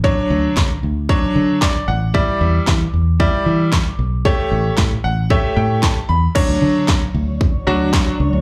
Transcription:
<<
  \new Staff \with { instrumentName = "Grand piano" } { \time 4/4 \key d \major \tempo 4 = 114 << { r2. d''8 fis''8 | r1 | r4. fis''8 e''8 g''8 a''8 b''8 | r1 | } \\ { <fis d' cis''>4 r4 <fis d' cis''>4 r4 | <g e' d''>4 r4 <g e' d''>4 r4 | <a g' cis''>4 r4 <a g' cis''>4 r4 | <fis d' cis''>4 r4. <fis d' fis'>4 r8 | } >> }
  \new Staff \with { instrumentName = "Ambient pad" } { \time 4/4 \key d \major r1 | r1 | r1 | <fis d' cis''>1 | }
  \new Staff \with { instrumentName = "Fingered electric bass" } { \clef bass \time 4/4 \key d \major a,,8 d,8 d8 d,4 d4 a,,8~ | a,,8 e,8 e8 e,4 e4 b,,8~ | b,,8 a,,8 a,8 a,,4 a,4 e,8 | r16 d,16 d4 d,4 d,4 cis,16 d,16 | }
  \new DrumStaff \with { instrumentName = "Drums" } \drummode { \time 4/4 bd4 <hc bd sn>4 bd4 <hc bd sn>4 | bd4 <hc bd sn>4 bd4 <hc bd sn>4 | bd4 <hc bd sn>4 bd4 <hc bd sn>4 | <cymc bd>4 <hc bd sn>4 bd4 <hc bd sn>4 | }
>>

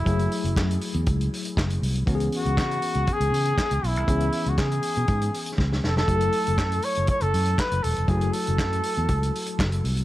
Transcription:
<<
  \new Staff \with { instrumentName = "Flugelhorn" } { \time 4/4 \key fis \minor \tempo 4 = 120 e'4. r2 r8 | r8 fis'4. gis'4. e'8~ | e'8. fis'16 gis'2 r8 a'16 a'16~ | a'4. cis''8 cis''16 a'8. b'8 a'8 |
gis'8 a'2. r8 | }
  \new Staff \with { instrumentName = "Tine electric piano" } { \time 4/4 \key fis \minor <fis a e' gis'>1 | <e b cis' fis' gis'>1 | <e b cis' gis'>1 | <fis a e' g' a'>1 |
<fis a e' fis'>1 | }
  \new Staff \with { instrumentName = "Fingered electric bass" } { \clef bass \time 4/4 \key fis \minor fis,,8 r16 fis,,16 fis,8 r16 e,16 cis,8 r8 fis,,8 bis,,8 | cis,8 r16 cis,16 cis8 r16 cis,16 r16 cis,16 cis8 r16 cis,16 b,,16 bis,,16 | cis,8 r16 cis,16 cis8 r16 b,16 gis,8 r8 cis,8 eis,,8 | fis,,8 r16 fis,,16 fis,8 r16 fis,,16 r16 fis,,16 fis,8 r16 fis,,16 e,,16 eis,,16 |
fis,,8 r16 fis,,16 fis,8 r16 e,16 cis,8 r8 fis,,8 bis,,8 | }
  \new DrumStaff \with { instrumentName = "Drums" } \drummode { \time 4/4 <hh bd>16 hh16 hho16 hh16 <hc bd sn>16 hh16 hho16 hh16 <hh bd>16 hh16 hho16 hh16 <hc bd sn>16 hh16 hho16 hh16 | <hh bd>16 hh16 hho16 hh16 <hc bd sn>16 hh16 hho16 hh16 <hh bd>16 hh16 hho16 hh16 <hc bd sn>16 hh16 hho16 hh16 | <hh bd>16 hh16 hho16 hh16 <hc bd sn>16 hh16 hho16 hh16 <hh bd>16 hh16 hho16 hh16 <bd sn>16 sn16 sn16 sn16 | <hh bd>16 hh16 hho16 hh16 <hc bd sn>16 hh16 hho16 hh16 <hh bd>16 hh16 hho16 hh16 <hc bd sn>16 hh16 hho16 hh16 |
<hh bd>16 hh16 hho16 hh16 <hc bd sn>16 hh16 hho16 hh16 <hh bd>16 hh16 hho16 hh16 <hc bd sn>16 hh16 hho16 hh16 | }
>>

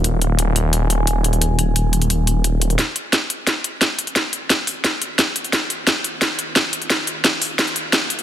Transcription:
<<
  \new Staff \with { instrumentName = "Analog synth pad" } { \time 4/4 \key ees \minor \tempo 4 = 175 <ees' bes' f'' aes''>1~ | <ees' bes' f'' aes''>1 | <ees' bes' f'' ges''>1~ | <ees' bes' f'' ges''>1~ |
<ees' bes' f'' ges''>1~ | <ees' bes' f'' ges''>1 | }
  \new Staff \with { instrumentName = "Detuned saw bass" } { \clef bass \time 4/4 \key ees \minor ees,,1~ | ees,,1 | r1 | r1 |
r1 | r1 | }
  \new DrumStaff \with { instrumentName = "Drums" } \drummode { \time 4/4 hh8 hh8 hh8 hh8 hh8 hh8 hh8 hh16 hh16 | hh8 hh8 hh8 hh16 hh16 hh8 hh8 hh8 hh16 hh16 | <hh sn>8 hh8 <hh sn>8 hh8 <hh sn>8 hh8 <hh sn>8 hh16 hh16 | <hh sn>8 hh8 <hh sn>8 hho8 <hh sn>8 hh8 <hh sn>8 hh16 hh16 |
<hh sn>8 hh8 <hh sn>8 hh8 <hh sn>8 hh8 <hh sn>8 hh16 hh16 | <hh sn>8 hh8 <hh sn>8 hho8 <hh sn>16 hh16 hh8 <hh sn>8 hh16 hh16 | }
>>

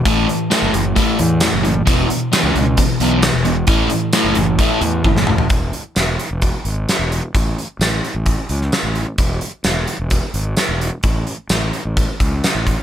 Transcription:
<<
  \new Staff \with { instrumentName = "Overdriven electric guitar" } { \clef bass \time 4/4 \key a \major \tempo 4 = 131 <a, e a>8 <a, e>8 <a, e a>8 <a, e>8 <a, e a>8 <a, e>8 <a, e>8 <a, e>8 | <e, b, e>8 <e, b,>8 <e, b, e>8 <e, b,>8 <e, b,>8 <e, b, e>8 <e, b,>8 <e, b,>8 | <a, e a>8 <a, e>8 <a, e a>8 <a, e>8 <a, e a>8 <a, e>8 <a, e>8 <a, e>8 | r1 |
r1 | r1 | r1 | }
  \new Staff \with { instrumentName = "Fingered electric bass" } { \clef bass \time 4/4 \key a \major a,,8 r8. fis,,16 fis,,8 r8 e,8. fis,,8. | e,,8 r8. cis,16 cis,8 r8 b,,8. e,,8. | a,,8 r8. fis,,16 fis,,8 r8 e,8 fis,,8 e,,8 | e,,8 r8 e,,8 r16 e,,8 r16 gis,,8 r16 e,,8 r16 |
a,,8 r8 a,,8 r16 a,,8 r16 cis,8 r16 a,,8 r16 | e,,8 r8 e,,8 r16 e,,8 r16 gis,,8 r16 e,,8 r16 | a,,8 r8 a,,8 r16 a,,8 r16 cis,8 r16 a,,8 r16 | }
  \new DrumStaff \with { instrumentName = "Drums" } \drummode { \time 4/4 <hh bd>8 hh8 <hh sn tamb>8 hh8 <hh bd>8 hh8 <hh sn tamb>8 hh8 | <hh bd>8 hh8 <hh sn tamb>8 hh8 <hh bd>8 hh8 <hh sn tamb>8 hh8 | <hh bd>8 hh8 <hh sn tamb>8 hh8 <hh bd>8 hh8 <bd tommh>16 sn16 toml16 tomfh16 | <hh bd>8 hh8 <hh sn tamb>8 hh8 <hh bd>8 hh8 <hh sn tamb>8 hh8 |
<hh bd>8 hh8 <hh sn tamb>8 hh8 <hh bd>8 hh16 sn16 <hh sn tamb>8 hh8 | <hh bd>8 hh8 <hh sn tamb>8 hh8 <hh bd>8 hh8 <hh sn tamb>8 hh8 | <hh bd>8 hh8 <hh sn tamb>8 hh8 <hh bd>8 <hh bd>8 <hh sn tamb>8 <hh bd>8 | }
>>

